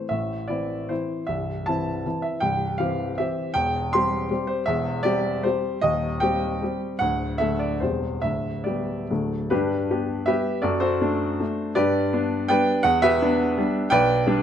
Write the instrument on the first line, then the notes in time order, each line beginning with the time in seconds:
grand piano
0.09 A1 A2 E5
0.48 E3 C4 E4 D5
0.89 E3 C4 E4 C5
1.27 C1 C2 E5
1.66 E3 C4 E4 A5
2.06 E3 C4 E4
2.22 E5
2.40 C1 C2 G5
2.78 E3 C4 G4 F5
3.18 E3 C4 G4 E5
3.54 E1 E2 G5
3.93 G3 C4 G4 C6
4.30 G3 C4 G4
4.47 C5
4.66 E1 E2 E5
5.03 G3 C4 G4 D5
5.43 G3 C4 G4 C5
5.81 D#1 D#2 D#5
6.20 G3 C4 G4 G5
6.62 G3 C4 G4
6.99 D1 D2 F#5
7.38 D3 A3 A4 E5
7.59 D5
7.80 E1 E2 G3 C4 G4 C5
8.22 D1 D2 E5
8.64 G3 B3 G4 D5
9.10 D1 D2 F#3 A3 A4
9.50 G2 D4 G4 B4
9.91 B3 G4
10.26 G3 B3 G4 B4 E5
10.62 F#2 F#4 A4 D5
10.80 F#4 A4 C5
11.01 A3 D4
11.40 A3 D4
11.75 G2 G4 B4 D5
12.13 B3 D4
12.48 G3 B3 D4 B4 D5 G5
12.83 E2 F#5
13.02 G4 B4 E5
13.22 B3 D4
13.57 G3 B3 D4
13.90 B1 B4 D5 G5
14.26 G3 D4